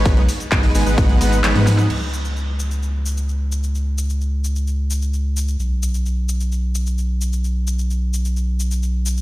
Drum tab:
CC |----------------|x---------------|----------------|----------------|
RD |x---x---x---x---|----------------|----------------|----------------|
HH |xxoxxooxxxoxxxox|----------------|----------------|----------------|
SH |x-xxx-xxx-xxx-xx|x-xxx-xxx-xxx-xx|x-xxx-xxx-xxx-xx|x-xxx-xxx-xxx-xx|
CP |----x-------x---|----------------|----------------|----------------|
SD |------------oooo|----------------|----------------|----------------|
BD |o---o---o-------|----------------|----------------|----------------|

CC |----------------|
RD |----------------|
HH |----------------|
SH |x-xxx-xxx-xxx-xx|
CP |----------------|
SD |----------------|
BD |----------------|